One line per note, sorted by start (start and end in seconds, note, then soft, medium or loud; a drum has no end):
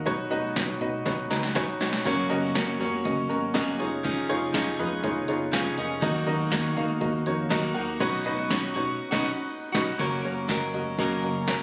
0.06 0.28 B1 loud
0.06 0.77 B2 medium
0.06 0.29 D#4 loud
0.06 0.29 F#4 loud
0.06 0.29 B4 loud
0.06 0.30 C#5 loud
0.06 kick loud
0.06 closed hi-hat loud
0.30 0.52 B1 medium
0.30 0.54 D#4 loud
0.30 0.54 F#4 loud
0.30 0.54 B4 loud
0.30 0.54 D#5 loud
0.30 closed hi-hat medium
0.30 floor tom medium
0.56 0.77 B1 loud
0.56 0.79 D#4 medium
0.56 0.80 F#4 medium
0.56 0.79 B4 medium
0.56 0.80 C#5 loud
0.56 kick loud
0.56 snare loud
0.56 closed hi-hat medium
0.81 1.02 B2 medium
0.81 1.04 D#4 medium
0.81 1.04 F#4 medium
0.81 1.04 B4 medium
0.81 1.04 D#5 loud
0.81 closed hi-hat medium
0.81 floor tom medium
1.05 1.27 B1 medium
1.05 1.29 D#4 medium
1.05 1.29 F#4 medium
1.05 1.29 B4 medium
1.05 1.29 C#5 medium
1.05 kick loud
1.05 snare medium
1.05 closed hi-hat medium
1.30 1.56 C#2 medium
1.30 1.54 D#4 medium
1.30 1.54 F#4 medium
1.30 1.54 B4 medium
1.30 1.54 D#5 medium
1.30 1.54 A#5 medium
1.30 snare medium
1.30 closed hi-hat medium
1.43 snare medium
1.55 1.76 B1 medium
1.55 1.79 D#4 loud
1.55 1.79 F#4 loud
1.55 1.79 B4 medium
1.55 1.79 C#5 loud
1.55 1.79 G#5 medium
1.55 kick loud
1.55 snare medium
1.55 closed hi-hat loud
1.81 2.01 B1 loud
1.81 2.04 D#4 medium
1.81 2.04 F#4 medium
1.81 2.04 B4 medium
1.81 2.04 C#5 loud
1.81 2.04 F#5 medium
1.81 snare loud
1.81 closed hi-hat medium
1.93 snare medium
2.05 2.26 F#1 loud
2.05 2.55 F#2 medium
2.05 2.55 C#3 medium
2.05 2.53 F#3 medium
2.05 2.54 A#3 medium
2.05 2.29 C#4 loud
2.05 2.56 C#4 medium
2.05 2.28 F#4 loud
2.05 2.56 F#4 medium
2.05 2.28 A#4 loud
2.05 2.29 C#5 loud
2.05 kick loud
2.05 closed hi-hat loud
2.30 2.51 F#1 loud
2.30 2.53 C#4 loud
2.30 2.53 F#4 loud
2.30 2.53 A#4 loud
2.30 2.53 D#5 loud
2.30 closed hi-hat medium
2.54 2.76 F#1 loud
2.54 2.80 F#3 medium
2.54 2.80 A#3 medium
2.54 2.78 C#4 medium
2.54 2.79 C#4 medium
2.54 2.78 F#4 medium
2.54 2.78 A#4 medium
2.54 2.78 C#5 medium
2.54 kick loud
2.54 snare loud
2.54 closed hi-hat medium
2.80 3.01 F#2 medium
2.80 3.53 F#3 soft
2.80 3.55 A#3 medium
2.80 3.03 C#4 loud
2.80 3.56 C#4 medium
2.80 3.54 F#4 medium
2.80 3.03 F#4 medium
2.80 3.03 A#4 medium
2.80 3.03 C#5 medium
2.80 closed hi-hat medium
2.80 floor tom medium
3.05 3.26 F#1 loud
3.05 3.28 C#4 medium
3.05 3.28 F#4 medium
3.05 3.28 A#4 medium
3.05 3.28 D#5 loud
3.05 kick loud
3.05 closed hi-hat medium
3.29 3.55 G#1 medium
3.29 3.52 C#4 medium
3.29 3.52 F#4 medium
3.29 3.52 A#4 medium
3.29 3.52 D#5 medium
3.29 closed hi-hat medium
3.54 3.75 F#1 medium
3.54 3.79 F#3 medium
3.54 3.80 A#3 medium
3.54 3.77 C#4 loud
3.54 3.80 C#4 medium
3.54 3.77 F#4 loud
3.54 3.78 F#4 medium
3.54 3.77 A#4 loud
3.54 3.77 D#5 loud
3.54 kick loud
3.54 snare loud
3.54 closed hi-hat loud
3.79 4.21 F1 loud
3.79 4.03 C#4 medium
3.79 4.25 D#4 medium
3.79 4.04 D#4 medium
3.79 4.25 F4 medium
3.79 4.04 G#4 medium
3.79 4.25 G#4 medium
3.79 4.25 C#5 loud
3.79 closed hi-hat medium
4.03 4.51 F3 medium
4.03 4.53 C#4 medium
4.03 4.54 D#4 medium
4.03 4.54 G#4 medium
4.03 kick loud
4.03 closed hi-hat loud
4.29 4.50 F1 medium
4.29 4.52 D#4 loud
4.29 4.52 F4 loud
4.29 4.52 G#4 loud
4.29 4.52 C#5 loud
4.29 closed hi-hat medium
4.53 4.74 F1 loud
4.53 4.78 F3 medium
4.53 4.79 C#4 medium
4.53 4.77 D#4 medium
4.53 4.78 D#4 medium
4.53 4.77 F4 medium
4.53 4.77 G#4 medium
4.53 4.76 G#4 medium
4.53 4.77 D#5 loud
4.53 kick loud
4.53 snare loud
4.53 closed hi-hat medium
4.77 4.99 F2 loud
4.77 5.52 C#4 soft
4.77 5.54 D#4 medium
4.77 5.01 D#4 medium
4.77 5.02 F4 medium
4.77 5.52 G#4 medium
4.77 5.02 G#4 medium
4.77 5.02 B4 loud
4.77 closed hi-hat medium
4.77 floor tom medium
5.03 5.24 F1 loud
5.03 5.26 D#4 medium
5.03 5.26 F4 medium
5.03 5.26 G#4 medium
5.03 5.26 C#5 loud
5.03 kick loud
5.03 closed hi-hat medium
5.28 5.48 F#1 medium
5.28 5.51 D#4 medium
5.28 5.51 F4 medium
5.28 5.51 G#4 medium
5.28 5.51 C#5 loud
5.28 closed hi-hat medium
5.52 5.73 F1 loud
5.52 5.77 F3 medium
5.52 5.78 C#4 medium
5.52 5.78 D#4 medium
5.52 5.76 G#4 medium
5.52 5.77 B4 medium
5.52 5.77 F5 medium
5.52 5.76 G#5 medium
5.52 kick loud
5.52 snare loud
5.52 closed hi-hat loud
5.77 6.04 F1 loud
5.77 6.02 C#4 soft
5.77 6.02 D#4 medium
5.77 6.02 G#4 medium
5.77 6.01 A#4 medium
5.77 6.01 D#5 medium
5.77 closed hi-hat medium
6.01 6.23 D#2 loud
6.01 7.99 D#3 medium
6.01 6.73 D#3 medium
6.01 6.50 F#3 medium
6.01 6.50 A#3 medium
6.01 6.25 D#4 loud
6.01 6.52 D#4 medium
6.01 6.25 F#4 loud
6.01 6.53 F#4 loud
6.01 6.25 A#4 loud
6.01 6.25 D#5 loud
6.01 kick loud
6.01 closed hi-hat loud
6.27 6.48 D#2 medium
6.27 6.50 D#4 loud
6.27 6.50 F#4 loud
6.27 6.50 A#4 loud
6.27 6.50 D#5 loud
6.27 closed hi-hat medium
6.50 6.72 D#2 loud
6.50 6.76 F#3 medium
6.50 6.77 A#3 medium
6.50 6.75 D#4 loud
6.50 6.75 D#4 medium
6.50 6.75 F#4 medium
6.50 6.73 F#4 medium
6.50 6.75 A#4 medium
6.50 6.75 D#5 loud
6.50 kick loud
6.50 snare loud
6.50 closed hi-hat medium
6.74 6.97 D#3 loud
6.74 7.50 A#3 medium
6.74 7.52 D#4 medium
6.74 6.99 D#4 loud
6.74 7.53 F#4 medium
6.74 6.99 F#4 medium
6.74 6.99 A#4 medium
6.74 7.00 F5 loud
6.74 closed hi-hat medium
6.74 floor tom medium
7.00 7.22 D#2 loud
7.00 7.24 D#4 medium
7.00 7.24 F#4 medium
7.00 7.24 A#4 medium
7.00 7.24 D#5 medium
7.00 kick loud
7.00 closed hi-hat medium
7.26 7.47 F2 medium
7.26 7.49 D#4 medium
7.26 7.49 F#4 medium
7.26 7.49 A#4 medium
7.26 7.49 C#5 loud
7.26 closed hi-hat medium
7.49 7.71 D#2 loud
7.49 7.75 F#3 medium
7.49 7.76 A#3 medium
7.49 7.73 D#4 loud
7.49 7.75 D#4 medium
7.49 7.73 F#4 loud
7.49 7.73 F#4 medium
7.49 7.73 A#4 loud
7.49 7.74 D#5 loud
7.49 kick loud
7.49 snare loud
7.49 closed hi-hat loud
7.74 7.96 D#2 medium
7.74 8.01 A#3 medium
7.74 7.98 D#4 medium
7.74 8.00 D#4 medium
7.74 8.00 F#4 medium
7.74 7.98 F#4 medium
7.74 7.98 A#4 medium
7.74 7.98 F#5 loud
7.74 closed hi-hat medium
8.00 8.21 B1 loud
8.00 8.50 B2 medium
8.00 8.71 B2 medium
8.00 8.49 F#3 medium
8.00 8.50 C#4 loud
8.00 8.23 D#4 loud
8.00 8.50 D#4 loud
8.00 8.23 F#4 loud
8.00 8.52 F#4 medium
8.00 8.23 B4 loud
8.00 8.23 C#5 loud
8.00 kick loud
8.00 closed hi-hat loud
8.25 8.46 B1 loud
8.25 8.49 D#4 loud
8.25 8.48 F#4 loud
8.25 8.48 B4 loud
8.25 8.48 D#5 loud
8.25 closed hi-hat medium
8.25 floor tom medium
8.49 8.71 B1 loud
8.49 8.75 F#3 medium
8.49 8.75 C#4 medium
8.49 8.73 D#4 medium
8.49 8.75 D#4 medium
8.49 8.73 F#4 medium
8.49 8.73 B4 medium
8.49 8.73 C#5 loud
8.49 kick loud
8.49 snare loud
8.49 closed hi-hat medium
8.74 8.96 B2 loud
8.74 9.14 C#4 soft
8.74 8.98 D#4 medium
8.74 9.00 D#4 medium
8.74 9.11 F#4 medium
8.74 8.98 F#4 medium
8.74 8.98 B4 medium
8.74 8.98 C#5 loud
8.74 closed hi-hat medium
8.74 floor tom medium
9.11 9.29 B1 loud
9.11 9.31 C#4 loud
9.11 9.29 D#4 loud
9.11 9.29 F#4 loud
9.11 9.29 F#4 medium
9.11 9.29 B4 medium
9.11 9.29 D#5 loud
9.11 kick loud
9.11 snare loud
9.11 crash medium
9.72 9.91 B1 loud
9.72 9.92 C#4 medium
9.72 9.91 D#4 loud
9.72 9.92 D#4 loud
9.72 9.90 F#4 loud
9.72 9.92 F#4 loud
9.72 9.92 B4 loud
9.72 9.92 D#5 loud
9.72 kick loud
9.72 snare loud
9.72 crash medium
9.97 10.19 F#1 loud
9.97 10.23 F#2 medium
9.97 10.23 C#3 medium
9.97 10.24 F#3 medium
9.97 10.24 A#3 medium
9.97 10.23 C#4 medium
9.97 10.22 F#4 loud
9.97 10.21 A#4 medium
9.97 10.22 A#4 medium
9.97 10.22 C#5 loud
9.97 kick loud
9.97 closed hi-hat loud
10.22 10.44 F#1 medium
10.22 10.47 F#3 soft
10.22 10.48 A#3 soft
10.22 10.49 C#4 soft
10.22 10.47 F#4 medium
10.22 10.48 A#4 soft
10.22 10.47 A#4 medium
10.22 10.47 C#5 medium
10.22 closed hi-hat medium
10.48 10.69 F#1 loud
10.48 10.98 F#3 medium
10.48 10.98 A#3 medium
10.48 10.99 C#4 medium
10.48 10.72 F#4 medium
10.48 10.72 A#4 medium
10.48 10.99 A#4 medium
10.48 10.72 D#5 medium
10.48 kick loud
10.48 snare loud
10.48 closed hi-hat medium
10.74 10.94 F#1 medium
10.74 10.97 F#4 medium
10.74 10.97 A#4 medium
10.74 10.96 D#5 medium
10.74 closed hi-hat medium
10.74 floor tom medium
10.98 11.19 F#1 loud
10.98 11.48 F#2 medium
10.98 11.48 C#3 medium
10.98 11.46 F#3 medium
10.98 11.47 A#3 medium
10.98 11.49 C#4 medium
10.98 11.21 F#4 loud
10.98 11.21 A#4 medium
10.98 11.49 A#4 medium
10.98 11.21 D#5 loud
10.98 kick loud
10.98 closed hi-hat medium
11.23 11.44 F#1 loud
11.23 11.46 F#4 medium
11.23 11.46 A#4 medium
11.23 11.46 D#5 medium
11.23 closed hi-hat medium
11.47 11.63 F#1 medium
11.47 11.63 F#3 medium
11.47 11.63 A#3 medium
11.47 11.63 C#4 medium
11.47 11.63 F#4 medium
11.47 11.63 A#4 medium
11.47 11.63 C#5 medium
11.47 kick loud
11.47 snare loud
11.47 closed hi-hat loud